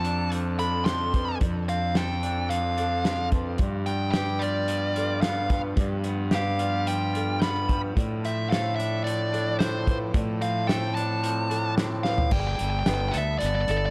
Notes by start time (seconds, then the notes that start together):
Already playing: F2 F3 C4 D4 A4 A5
0.04 D4 D5, closed hi-hat
0.32 F3, closed hi-hat
0.59 D4 A4 B5, closed hi-hat
0.85 C4 C6, snare, closed hi-hat
1.14 F3 B4, kick, closed hi-hat
1.40 F2 F3 D5, kick, closed hi-hat
1.69 C4 F5, closed hi-hat
1.95 A4 C5 G5, snare, closed hi-hat
2.23 D4 D5, closed hi-hat
2.50 F3 F5, closed hi-hat
2.77 D4 A4, closed hi-hat
3.04 C4, snare, closed hi-hat
3.32 F3 B4, kick, closed hi-hat
3.58 G2 B3 G4 D5, kick, closed hi-hat
3.86 B3 G5, closed hi-hat
4.12 G4 G5, snare, closed hi-hat
4.16 B4
4.39 F4 D5, closed hi-hat
4.44 D5
4.68 F3, closed hi-hat
4.96 F4 A4, closed hi-hat
5.21 B3 F5, snare, closed hi-hat
5.49 F3 B4, kick, closed hi-hat
5.76 G2 D5, kick, closed hi-hat
6.04 B3, closed hi-hat
6.31 G4 B4 F5, snare, closed hi-hat
6.59 F4 D5, closed hi-hat
6.86 F3 G5, closed hi-hat
7.13 F4 A4, closed hi-hat
7.40 B3 B5, snare, closed hi-hat
7.68 F3 B4, kick, closed hi-hat
7.96 A2 F3 D4 A4 D5, kick, closed hi-hat
8.24 C4 E5, closed hi-hat
8.50 A4 C5 F5, snare, closed hi-hat
8.76 D4 D5 E5
8.80 closed hi-hat
9.04 F3 D5, closed hi-hat
9.33 D4 A4, closed hi-hat
9.59 C4 C5, snare, closed hi-hat
9.86 F3 B4, kick, closed hi-hat
10.12 A2 C4 D5, kick, closed hi-hat
10.41 C4 F5, closed hi-hat
10.67 A4 C5 G5, snare, closed hi-hat
10.95 D4 D5 A5, closed hi-hat
11.23 F3, closed hi-hat
11.50 D4 A4, closed hi-hat
11.78 C4, snare, closed hi-hat
12.03 F3 B4 F5, snare
12.18 floor tom
12.31 G1 G3 B3 A4 D5 G5, kick, crash
12.40 G5
12.47 G5
12.55 G3 G5, closed hi-hat
12.60 G1 G5
12.70 G5
12.79 G5
12.86 G1 B3 B4 G5, snare, closed hi-hat
12.94 G5
13.01 G5
13.09 E5 G5
13.14 D2 A4 D5, closed hi-hat
13.38 B3 D5, closed hi-hat
13.43 G1 D5
13.55 D5
13.61 D5
13.68 G1 A4 D5, closed hi-hat
13.77 D5
13.86 D5